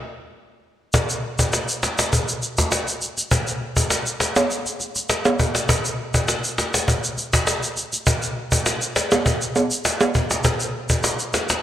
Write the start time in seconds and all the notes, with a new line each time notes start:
0.94 cajon bass, shaker
1.10 cajon slap, shaker
1.24 cajon slap
1.39 cajon bass, shaker
1.53 cajon slap, shaker
1.69 cajon slap, shaker
1.83 cajon slap, shaker
1.99 cajon slap, shaker
2.13 cajon bass, shaker
2.29 cajon slap, shaker
2.43 cajon slap, shaker
2.58 cajon bass, cajon slap, shaker
2.72 cajon slap, shaker
2.88 cajon slap, shaker
3.02 cajon slap, shaker
3.17 cajon slap, shaker
3.31 cajon bass, shaker
3.47 cajon slap, shaker
3.61 cajon slap
3.77 cajon bass, shaker
3.90 cajon slap, shaker
4.06 cajon slap, shaker
4.20 cajon slap, shaker
4.36 cajon slap, high timbale, shaker
4.50 cajon slap, shaker
4.66 cajon slap, shaker
4.80 cajon slap, shaker
4.96 cajon slap, shaker
5.09 cajon slap, shaker
5.25 cajon slap, high timbale, shaker
5.39 cajon bass, shaker
5.55 cajon slap, shaker
5.69 cajon bass, shaker
5.85 cajon slap, shaker
5.99 cajon slap
6.14 cajon bass, shaker
6.28 cajon slap, shaker
6.44 cajon slap, shaker
6.58 cajon slap, shaker
6.74 cajon slap, shaker
6.88 cajon bass, shaker
7.04 cajon slap, shaker
7.18 cajon slap, shaker
7.33 cajon bass, cajon slap, shaker
7.47 cajon slap, shaker
7.63 cajon slap, shaker
7.77 cajon slap, shaker
7.93 cajon slap, shaker
8.07 cajon bass, shaker
8.23 cajon slap, shaker
8.37 cajon slap
8.52 cajon bass, shaker
8.66 cajon slap, shaker
8.82 cajon slap, shaker
8.96 cajon slap, shaker
9.12 cajon slap, high timbale, shaker
9.26 cajon bass, shaker
9.41 cajon slap, shaker
9.56 cajon slap, high timbale, shaker
9.71 cajon slap, shaker
9.85 cajon slap, shaker
10.01 cajon slap, high timbale, shaker
10.15 cajon bass, shaker
10.31 cajon slap, shaker
10.44 cajon bass, shaker
10.60 cajon slap, shaker
10.75 cajon slap
10.89 cajon bass, shaker
11.04 cajon slap, shaker
11.19 cajon slap, shaker
11.34 cajon slap, shaker
11.49 cajon slap, shaker